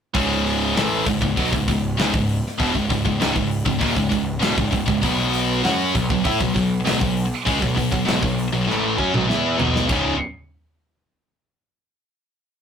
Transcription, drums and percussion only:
0.15 kick loud
0.15 open hi-hat medium
0.32 snare soft
0.46 open hi-hat medium
0.76 snare loud
0.76 open hi-hat medium
1.06 kick medium
1.06 open hi-hat medium
1.22 kick medium
1.37 kick medium
1.37 open hi-hat medium
1.53 kick medium
1.68 kick medium
1.68 open hi-hat medium
1.98 snare loud
1.98 open hi-hat medium
2.14 kick loud
2.29 open hi-hat medium
2.46 snare soft
2.60 kick medium
2.60 open hi-hat medium
2.75 kick medium
2.90 kick medium
2.90 open hi-hat medium
3.05 kick medium
3.21 snare loud
3.21 open hi-hat medium
3.36 kick medium
3.51 open hi-hat medium
3.66 kick medium
3.81 kick loud
3.81 open hi-hat medium
3.97 kick medium
4.11 kick medium
4.11 open hi-hat medium
4.41 snare loud
4.41 open hi-hat medium
4.58 kick loud
4.72 kick medium
4.72 open hi-hat medium
4.88 kick medium
5.02 kick loud
5.02 open hi-hat medium
5.19 snare soft
5.33 open hi-hat medium
5.64 snare loud
5.64 open hi-hat medium
5.95 kick loud
5.95 open hi-hat medium
6.10 kick medium
6.24 kick loud
6.24 open hi-hat medium
6.40 kick medium
6.56 kick medium
6.56 open hi-hat medium
6.86 snare loud
6.86 open hi-hat medium
7.01 kick loud
7.17 open hi-hat medium
7.47 kick loud
7.47 open hi-hat medium
7.62 kick medium
7.62 snare soft
7.77 kick medium
7.77 open hi-hat medium
7.92 kick medium
8.07 snare loud
8.07 open hi-hat medium
8.23 kick medium
8.38 open hi-hat medium
8.70 snare medium
8.98 kick medium
9.14 mid tom medium
9.30 snare medium
9.60 floor tom loud
9.76 snare medium
9.89 kick loud
9.89 crash medium

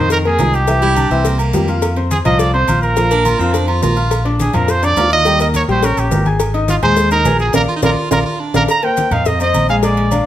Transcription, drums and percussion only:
0.10 cowbell loud
0.10 high conga soft
0.10 maracas medium
0.25 high conga soft
0.25 low agogo medium
0.39 cowbell medium
0.39 high conga medium
0.39 low timbale medium
0.39 low agogo loud
0.39 maracas medium
0.53 high conga soft
0.53 maracas soft
0.67 cowbell loud
0.67 high conga soft
0.67 low agogo medium
0.67 maracas medium
0.82 cowbell medium
0.82 high conga soft
0.82 low agogo medium
0.96 cowbell medium
0.96 high conga medium
0.96 low agogo loud
0.96 maracas medium
1.11 maracas soft
1.25 cowbell loud
1.25 high conga soft
1.25 low agogo medium
1.25 maracas medium
1.39 high conga soft
1.39 low agogo loud
1.39 maracas medium
1.53 cowbell medium
1.53 high conga medium
1.53 low timbale medium
1.53 maracas medium
1.68 low agogo medium
1.68 maracas soft
1.82 cowbell loud
1.82 high conga soft
1.82 low agogo loud
1.82 maracas medium
1.96 high conga soft
1.96 low agogo medium
2.11 cowbell medium
2.11 high conga loud
2.11 low agogo medium
2.11 maracas medium
2.25 cowbell medium
2.25 high conga soft
2.25 low conga medium
2.25 low agogo loud
2.25 maracas soft
2.39 cowbell loud
2.39 high conga soft
2.39 maracas medium
2.54 high conga soft
2.54 low agogo medium
2.68 cowbell medium
2.68 high conga medium
2.68 low agogo loud
2.68 maracas medium
2.83 high conga soft
2.83 maracas soft
2.96 cowbell loud
2.96 high conga soft
2.96 low agogo medium
2.96 maracas medium
3.11 cowbell medium
3.11 high conga soft
3.11 low agogo medium
3.11 maracas medium
3.25 cowbell medium
3.25 high conga medium
3.25 low agogo loud
3.25 maracas medium
3.40 maracas soft
3.54 cowbell loud
3.54 high conga soft
3.54 low agogo medium
3.54 maracas medium
3.68 high conga soft
3.68 low agogo loud
3.82 cowbell medium
3.82 high conga medium
3.82 low timbale medium
3.82 maracas medium
3.96 low agogo medium
3.96 maracas soft
4.11 cowbell loud
4.11 high conga soft
4.11 low agogo loud
4.11 maracas medium
4.25 high conga soft
4.25 low agogo medium
4.39 cowbell medium
4.39 high conga loud
4.39 low agogo medium
4.39 maracas medium
4.54 cowbell medium
4.54 high conga soft
4.54 low conga medium
4.54 low agogo loud
4.54 maracas soft
4.68 cowbell loud
4.68 high conga soft
4.68 maracas medium
4.83 high conga soft
4.83 low agogo medium
4.83 maracas medium
4.97 cowbell medium
4.97 high conga medium
4.97 low timbale medium
4.97 low agogo loud
4.97 maracas medium
5.11 high conga soft
5.11 maracas soft
5.25 cowbell loud
5.25 high conga soft
5.25 low agogo medium
5.25 maracas medium
5.39 cowbell medium
5.39 high conga soft
5.39 low agogo medium
5.39 maracas medium
5.54 cowbell medium
5.54 high conga medium
5.54 low agogo loud
5.54 maracas medium
5.69 maracas soft
5.83 cowbell loud
5.83 high conga soft
5.83 low agogo medium
5.83 maracas medium
5.97 high conga soft
5.97 low agogo loud
5.97 maracas medium
6.11 cowbell medium
6.11 high conga medium
6.11 low timbale medium
6.11 maracas medium
6.25 high conga medium
6.25 low agogo medium
6.25 maracas soft
6.40 cowbell loud
6.40 low agogo loud
6.40 maracas medium
6.54 high conga soft
6.54 low agogo medium
6.68 cowbell medium
6.68 high conga loud
6.68 low agogo medium
6.68 maracas medium
6.82 cowbell medium
6.82 high conga soft
6.82 low conga medium
6.82 low agogo loud
6.82 maracas soft
6.97 cowbell loud
6.97 maracas medium
7.11 high conga soft
7.11 low agogo medium
7.11 maracas medium
7.25 cowbell medium
7.25 high conga medium
7.25 low timbale medium
7.25 low agogo loud
7.25 maracas medium
7.39 high conga soft
7.39 maracas soft
7.53 cowbell loud
7.53 high conga loud
7.53 high timbale loud
7.53 maracas loud
7.82 cowbell loud
7.82 high conga loud
7.82 high timbale loud
7.82 maracas loud
8.11 cowbell loud
8.11 high conga loud
8.11 high timbale loud
8.11 maracas loud
8.54 cowbell medium
8.54 high conga loud
8.54 high timbale loud
8.54 maracas medium
8.68 cowbell loud
8.68 low agogo loud
8.68 maracas medium
8.83 high conga soft
8.83 low agogo medium
8.97 cowbell medium
8.97 high conga medium
8.97 low agogo medium
8.97 maracas medium
9.11 cowbell medium
9.11 high conga soft
9.11 low conga medium
9.11 low agogo loud
9.11 maracas soft
9.25 cowbell loud
9.25 high conga soft
9.25 low conga medium
9.25 maracas medium
9.40 high conga soft
9.40 low agogo medium
9.40 maracas medium
9.54 cowbell medium
9.54 high conga medium
9.54 low agogo loud
9.54 maracas medium
9.69 high conga soft
9.69 maracas soft
9.83 cowbell loud
9.83 high conga soft
9.83 low agogo medium
9.83 maracas medium
9.97 cowbell medium
9.97 high conga soft
9.97 low agogo medium
10.11 cowbell medium
10.11 high conga medium
10.11 low agogo loud
10.11 maracas medium

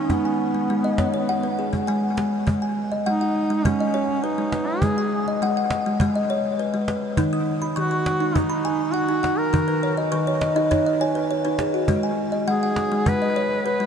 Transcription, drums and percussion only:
0.10 cajon bass medium
0.10 cajon slap soft
0.25 cajon slap soft
0.54 cajon slap soft
0.69 cajon slap soft
0.84 cajon slap soft
0.98 cajon bass medium
0.98 cajon slap medium
1.14 cajon slap soft
1.28 cajon slap soft
1.73 cajon bass soft
1.88 cajon slap soft
2.18 cajon slap medium
2.47 cajon bass medium
2.63 cajon slap soft
2.92 cajon slap soft
3.07 cajon slap soft
3.65 cajon bass medium
4.09 cajon slap soft
4.52 cajon slap medium
4.82 cajon bass medium
4.97 cajon slap soft
5.26 cajon slap soft
5.41 cajon slap soft
5.70 cajon slap medium
6.00 cajon bass medium
6.88 cajon slap medium
7.17 cajon bass medium
7.33 cajon slap soft
7.62 cajon slap soft
7.77 cajon slap soft
8.06 cajon slap medium
8.36 cajon bass medium
9.24 cajon slap medium
9.54 cajon bass medium
10.27 cajon slap soft
10.41 cajon slap medium
10.72 cajon bass medium
10.72 cajon slap soft
11.59 cajon slap medium
11.88 cajon bass medium
12.03 cajon slap soft
12.32 cajon slap soft
12.47 cajon slap soft
12.76 cajon slap medium
13.06 cajon bass medium

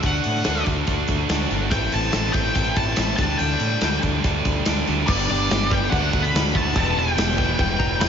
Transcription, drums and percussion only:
0.03 kick loud
0.03 closed hi-hat medium
0.24 closed hi-hat medium
0.35 snare soft
0.44 snare medium
0.44 closed hi-hat medium
0.66 kick medium
0.66 closed hi-hat medium
0.87 kick medium
0.87 closed hi-hat medium
1.08 kick medium
1.08 closed hi-hat medium
1.29 snare loud
1.29 closed hi-hat medium
1.50 closed hi-hat medium
1.71 kick loud
1.71 closed hi-hat medium
1.92 closed hi-hat medium
2.03 snare soft
2.12 snare loud
2.12 closed hi-hat medium
2.23 snare soft
2.33 kick medium
2.33 closed hi-hat medium
2.55 kick medium
2.55 closed hi-hat medium
2.76 kick medium
2.76 closed hi-hat medium
2.96 snare loud
2.96 closed hi-hat medium
3.18 kick loud
3.18 closed hi-hat medium
3.39 closed hi-hat medium
3.60 closed hi-hat medium
3.81 snare loud
3.81 closed hi-hat medium
4.03 kick medium
4.03 closed hi-hat medium
4.24 kick medium
4.24 closed hi-hat medium
4.45 kick medium
4.45 closed hi-hat medium
4.65 snare loud
4.65 closed hi-hat medium
4.87 closed hi-hat medium
5.08 kick loud
5.08 crash loud
5.08 crash medium
5.51 snare loud
5.51 crash medium
5.71 kick medium
5.92 kick loud
5.92 crash medium
6.13 kick medium
6.35 snare loud
6.35 crash medium
6.55 kick medium
6.76 kick loud
6.76 crash medium
7.18 snare loud
7.18 crash medium
7.38 kick medium
7.59 kick loud
7.59 crash medium
7.80 kick medium
8.01 snare loud
8.01 crash medium

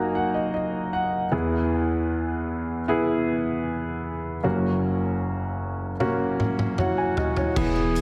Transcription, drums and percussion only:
6.00 high tom soft
6.40 mid tom medium
6.59 mid tom soft
6.78 mid tom medium
7.17 floor tom medium
7.37 floor tom medium
7.56 kick medium
7.56 crash medium
7.96 closed hi-hat medium

